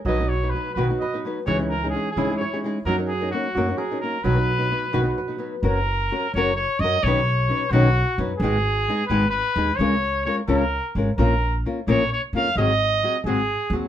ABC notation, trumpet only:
X:1
M:6/8
L:1/8
Q:3/8=87
K:B
V:1 name="Trumpet"
d c B B d z | c A G G c z | A G F2 G A | B4 z2 |
[K:F#] A3 c c d | c3 F2 z | G3 B B2 | c2 c A2 z |
A2 z c c e | d3 G2 z |]